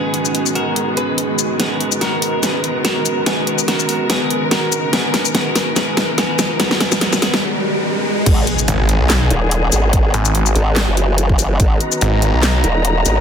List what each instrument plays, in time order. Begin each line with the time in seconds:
Already playing: string section D#3 G#3 B3 G#4, ambient pad G#3 B3 C#4 F#4 D#5, clean electric guitar B3 G#4
0.14 closed hi-hat
0.25 shaker
0.35 closed hi-hat
0.46 shaker
0.55 clean electric guitar F#4 A#4, closed hi-hat
0.76 closed hi-hat
0.97 clean electric guitar G#4 B4, closed hi-hat
1.18 closed hi-hat
1.39 closed hi-hat, shaker
1.60 clean electric guitar B3 G#4, string section A#4, snare, closed hi-hat, riser
1.81 closed hi-hat
1.92 shaker
2.01 clean electric guitar F#4 A#4, snare, closed hi-hat
2.22 open hi-hat
2.43 clean electric guitar B3 G#4, snare, closed hi-hat, shaker
2.64 closed hi-hat
2.85 clean electric guitar F#4 A#4, snare, closed hi-hat
3.06 closed hi-hat, shaker
3.26 clean electric guitar B3 G#4, snare, closed hi-hat
3.47 closed hi-hat
3.59 shaker
3.68 clean electric guitar F#4 A#4, snare, closed hi-hat
3.79 shaker
3.89 open hi-hat
4.10 clean electric guitar B3 G#4, snare, closed hi-hat
4.30 closed hi-hat
4.51 clean electric guitar F#4 A#4, snare, closed hi-hat
4.72 closed hi-hat, shaker
4.93 clean electric guitar B3 G#4, snare, closed hi-hat
5.14 snare, closed hi-hat
5.25 shaker
5.35 clean electric guitar B3 G#4, snare, closed hi-hat
5.56 snare, open hi-hat
5.76 clean electric guitar B3 G#4, snare, closed hi-hat, shaker
5.97 snare, closed hi-hat
6.18 clean electric guitar B3 G#4, snare, closed hi-hat
6.39 snare, closed hi-hat, shaker
6.60 clean electric guitar B3 G#4, snare, closed hi-hat
6.71 snare
6.80 clean electric guitar B3 G#4, snare, closed hi-hat
6.92 snare, shaker
7.01 clean electric guitar B3 G#4, snare, closed hi-hat
7.13 snare, shaker
7.22 clean electric guitar B3 G#4, snare, open hi-hat
7.34 snare
8.26 wobble bass G#1, string section D#3 G#3 B3 G#4, ambient pad C#4, kick, closed hi-hat, crash, impact
8.42 ambient pad F#4
8.47 closed hi-hat
8.59 shaker
8.68 detuned saw bass G#1, closed hi-hat
8.87 ambient pad B4, closed hi-hat
9.00 detuned saw bass B1, ambient pad D#5
9.10 snare, clap, closed hi-hat, shaker
9.31 wobble bass D#1, closed hi-hat
9.51 closed hi-hat
9.72 wobble bass G#1, open hi-hat, shaker
9.93 kick, closed hi-hat
10.14 detuned saw bass G#1, closed hi-hat
10.25 shaker
10.35 closed hi-hat
10.46 shaker
10.55 wobble bass G#1, closed hi-hat
10.76 snare, clap, closed hi-hat
10.88 wobble bass F#1
10.97 closed hi-hat
11.18 closed hi-hat
11.29 kick
11.39 open hi-hat, shaker
11.60 wobble bass G#1, string section A#5, kick, closed hi-hat
11.81 closed hi-hat
11.92 shaker
12.01 detuned saw bass G#1, closed hi-hat
12.22 closed hi-hat
12.34 detuned saw bass B1
12.43 snare, clap, closed hi-hat, shaker
12.64 wobble bass D#1, closed hi-hat
12.85 closed hi-hat
13.06 wobble bass G#1, open hi-hat, shaker